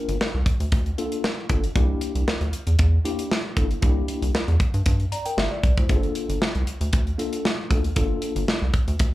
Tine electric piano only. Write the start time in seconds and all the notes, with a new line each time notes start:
Already playing: A#3 D4 F4 A#4
0.98 A#3 D4 F4 A4
1.50 A#3 D4 F4 A4
1.75 A#3 D4 E4 G4
3.05 A#3 D4 E4 G4
3.56 A#3 D4 E4 A4
3.82 A#3 D4 E4 G4
5.12 D5 A#5
5.26 A#4 G5
5.38 G4 E5
5.51 D5
5.77 E4 C5
5.89 A#3 D4 F4 G#4
5.96 A4
7.18 A#3 D4 F4 A4
7.70 A#3 D4 F4 A4
7.96 A#3 D4 F4 A4